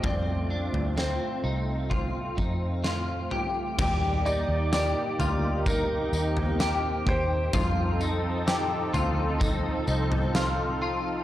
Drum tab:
CC |----------------|x---------------|----------------|
TB |----------------|x-x-x-x-x-x-x---|x-x-x-x-x-x-x---|
SD |----o-------o---|----o-------o---|----o-------o---|
FT |o--o----o-----o-|o-----o-o--o----|o-----o-o--o----|
BD |o-------o-o-----|o-------o-----o-|o-------o-------|